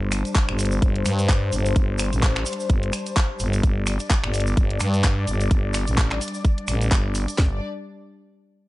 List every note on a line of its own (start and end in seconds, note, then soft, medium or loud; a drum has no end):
0.00 0.23 G1 loud
0.00 7.34 G3 medium
0.00 7.34 D4 medium
0.00 3.62 C5 medium
0.12 finger snap medium
0.12 open hi-hat loud
0.12 shaker medium
0.25 closed hi-hat soft
0.25 shaker medium
0.35 kick loud
0.35 clap loud
0.35 closed hi-hat medium
0.35 shaker soft
0.49 0.81 G1 loud
0.49 finger snap medium
0.59 open hi-hat medium
0.59 shaker medium
0.65 closed hi-hat medium
0.71 shaker medium
0.82 1.04 G1 loud
0.82 kick loud
0.82 closed hi-hat medium
0.82 shaker soft
0.96 closed hi-hat soft
1.05 1.51 G2 loud
1.05 finger snap medium
1.05 open hi-hat loud
1.05 shaker loud
1.19 closed hi-hat medium
1.19 shaker soft
1.29 kick loud
1.29 clap loud
1.29 closed hi-hat medium
1.29 shaker soft
1.52 1.74 G1 loud
1.52 open hi-hat medium
1.52 shaker medium
1.66 closed hi-hat medium
1.66 shaker medium
1.76 2.10 G1 loud
1.76 kick loud
1.76 closed hi-hat medium
1.76 shaker soft
1.99 finger snap medium
1.99 open hi-hat loud
1.99 shaker medium
2.13 2.45 A1 loud
2.13 closed hi-hat medium
2.13 shaker soft
2.23 kick loud
2.23 clap loud
2.23 closed hi-hat medium
2.23 shaker soft
2.36 finger snap medium
2.36 clap soft
2.46 open hi-hat medium
2.46 shaker medium
2.53 closed hi-hat medium
2.60 shaker soft
2.69 2.91 G1 loud
2.69 kick loud
2.69 closed hi-hat medium
2.69 shaker soft
2.83 closed hi-hat medium
2.93 finger snap medium
2.93 open hi-hat loud
2.93 shaker medium
3.06 closed hi-hat medium
3.06 shaker soft
3.17 kick loud
3.17 clap loud
3.17 closed hi-hat medium
3.17 shaker soft
3.39 3.62 G1 medium
3.39 open hi-hat medium
3.39 shaker medium
3.53 closed hi-hat medium
3.53 shaker medium
3.63 3.98 G1 loud
3.63 7.37 D5 medium
3.63 kick loud
3.63 closed hi-hat medium
3.63 shaker soft
3.87 finger snap medium
3.87 open hi-hat loud
3.87 shaker medium
4.00 closed hi-hat medium
4.00 shaker medium
4.10 kick loud
4.10 clap loud
4.10 closed hi-hat medium
4.10 shaker soft
4.24 4.55 G1 loud
4.24 finger snap medium
4.34 open hi-hat medium
4.34 shaker medium
4.40 closed hi-hat medium
4.47 shaker medium
4.57 4.79 G1 loud
4.57 kick loud
4.57 closed hi-hat medium
4.57 shaker soft
4.70 closed hi-hat medium
4.80 5.26 G2 loud
4.80 finger snap medium
4.80 open hi-hat loud
4.80 shaker medium
4.94 closed hi-hat medium
4.94 shaker soft
5.03 kick loud
5.03 clap loud
5.03 closed hi-hat medium
5.03 shaker soft
5.27 5.49 G1 loud
5.27 open hi-hat medium
5.27 shaker medium
5.41 closed hi-hat medium
5.41 shaker soft
5.51 5.85 G1 loud
5.51 kick loud
5.51 closed hi-hat medium
5.51 shaker soft
5.74 finger snap medium
5.74 open hi-hat loud
5.74 shaker medium
5.87 6.20 A1 loud
5.87 closed hi-hat medium
5.87 shaker medium
5.98 kick loud
5.98 clap loud
5.98 closed hi-hat medium
5.98 shaker soft
6.11 finger snap medium
6.11 clap soft
6.21 open hi-hat medium
6.21 shaker medium
6.28 closed hi-hat medium
6.34 shaker medium
6.45 kick loud
6.45 closed hi-hat medium
6.45 shaker soft
6.58 closed hi-hat medium
6.68 6.90 A1 loud
6.68 finger snap medium
6.68 open hi-hat loud
6.68 shaker medium
6.81 closed hi-hat medium
6.81 shaker soft
6.91 7.26 G1 loud
6.91 kick loud
6.91 clap loud
6.91 closed hi-hat medium
6.91 shaker soft
7.15 open hi-hat medium
7.15 shaker medium
7.28 closed hi-hat medium
7.28 shaker medium
7.38 7.60 G1 medium
7.38 7.60 G3 medium
7.38 7.60 D4 medium
7.38 7.60 D5 medium
7.38 kick loud
7.38 snare loud
7.38 clap medium